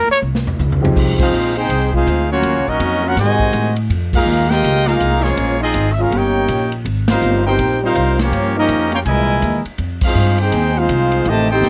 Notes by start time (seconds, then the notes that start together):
0.08 C#5, muted upright bass stroke
0.22 C2
0.35 snare
0.47 floor tom
0.59 C#2, floor tom, hi-hat pedal
0.72 floor tom
0.81 F3 G#3 C4 D#4 G4, floor tom
0.96 C2, kick, crash
1.19 G#3 C4 D#4 F4 G#4 C5 F5, kick, crash
1.31 A#1, hi-hat pedal
1.56 C4 D#4 G#4 C5 G5, ride
1.69 C2, kick, ride
1.93 G#3 C4 D#4 F4 G#4 C5 F5, kick
2.07 D2, hi-hat pedal, ride
2.31 F#3 A#3 C#4 F4 F#4 C#5
2.43 D#2, kick, ride
2.56 C#2
2.67 A#1 F#3 A#3 C#4 D#4 F#4 A#4 D#5
2.79 F2, kick, hi-hat pedal, ride
3.05 A#3 C#4 F4 F#4 A#4 F#5
3.16 G#2 C3 D#3 G#3 F#4 C5 D#5 G#5, kick, snare, ride
3.40 kick
3.53 A2, hi-hat pedal, ride
3.76 ride
3.90 F2, kick, ride
4.13 G#3 A#3 D#4 F4 G#4 A#4 F5, kick, crash
4.26 D#2, hi-hat pedal
4.49 G#3 A#3 F4 G4 A#4 D#5 G5, snare
4.64 C#2, kick, ride
4.86 G#3 A#3 D#4 F4 G#4 A#4 F5, snare
5.00 C2, kick, hi-hat pedal, ride
5.22 F3 G#3 A#3 C#4 F4 G#4 C#5, snare
5.37 A#1, kick, ride
5.61 C4 D#4 F4 G#4 D#5
5.74 G#1, kick, hi-hat pedal, ride
5.93 E5
5.98 G#3 C#4 F4 G#4 A#4 F5
6.11 G1 A#3 C#4 G4, kick, ride
6.15 D#4 A#4 C#5 G5
6.48 A#1, kick, hi-hat pedal, ride
6.72 ride
6.85 G#1, kick, ride
7.08 G3 C4 D#4 F4 A#4 C5 F5, snare, ride
7.21 G1, hi-hat pedal
7.46 C4 D#4 G4 A#4 C5 G5
7.58 A#1, kick, ride
7.83 G3 C4 D#4 F4 A#4 C5 F5
7.95 C2, kick, hi-hat pedal, ride
8.19 F3 A#3 C#4 F4 G4 C#5, snare, ride
8.32 G2, kick, ride
8.56 F3 A#3 C#4 D#4 G4 A#4 D#5
8.68 F2, kick, hi-hat pedal, ride
8.92 A#3 C#4 F4 G4 A#4 C#5 G5, ride
9.05 C2 A#2 E3 G#3 E4 A#4 D#5 G#5, kick, ride
9.42 D#2, kick, hi-hat pedal, ride
9.65 muted upright bass stroke, ride
9.78 F2, kick, ride
10.01 G#3 C4 F4 C5 F5, kick, crash
10.05 D#4 G#4
10.15 G2, hi-hat pedal
10.38 C4 D#4 G#4 C5 G5, ride
10.52 D#2, kick, ride
10.78 G#3 C4 D#4 F4 G#4 C5 F5
10.89 C2, kick, hi-hat pedal, ride
11.12 ride
11.25 A1 C3 D#3 A3 G4 C5 D#5 A5, kick, ride
11.51 C4 D#4 G4 A4 C5 G5
11.61 G1, snare, hi-hat pedal